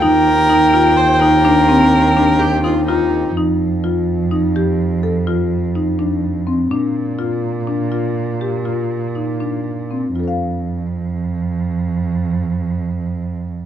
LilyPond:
<<
  \new Staff \with { instrumentName = "Soprano saxophone" } { \time 7/4 \key f \mixolydian \tempo 4 = 125 g''1. r4 | r1. r4 | r1. r4 | r1. r4 | }
  \new Staff \with { instrumentName = "Viola" } { \time 7/4 \key f \mixolydian bes'2 c''8 bes'2~ bes'8 g'8 f'8 ees'4 | r1. r4 | r1. r4 | r1. r4 | }
  \new Staff \with { instrumentName = "Marimba" } { \time 7/4 \key f \mixolydian ees'4 ees'8 f'4 ees'8 d'8 c'4 d'4 ees'8 f'4 | ees'4 f'4 ees'8 g'4 a'8 f'4 ees'8 d'4 c'8 | d'4 f'4 d'8 f'4 g'8 f'4 ees'8 d'4 c'8 | <f' a' c'' f''>1.~ <f' a' c'' f''>4 | }
  \new Staff \with { instrumentName = "Harmonium" } { \time 7/4 \key f \mixolydian <ees c' g'>1.~ <ees c' g'>4 | r1. r4 | r1. r4 | r1. r4 | }
  \new Staff \with { instrumentName = "Cello" } { \clef bass \time 7/4 \key f \mixolydian ees,1.~ ees,4 | f,1.~ f,4 | bes,1.~ bes,4 | f,1.~ f,4 | }
>>